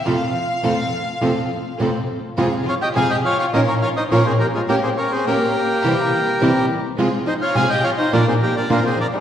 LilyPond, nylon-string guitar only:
\new Staff \with { instrumentName = "Nylon-string guitar" } { \time 4/4 \key f \major \tempo 4 = 104 <f, c f a c' f'>8 r8 <f, c f a c' f'>8 r8 <f, c f a c' f'>8 r8 <f, c f a c' f'>8 r8 | \key f \minor <f, c f aes c' f'>8 r8 <f, c f aes c' f'>8 r8 <bes, f bes des' f'>8 r8 <bes, f bes des' f'>8 r8 | <bes des' g'>8 r8 <bes des' g'>8 r8 <c e g c' e'>8 r8 <c e g c' e'>8 r8 | <c f aes c' f'>8 r8 <c f aes c' f'>8 r8 <bes, f bes d' f'>8 r8 <bes, f bes d' f'>8 r8 | }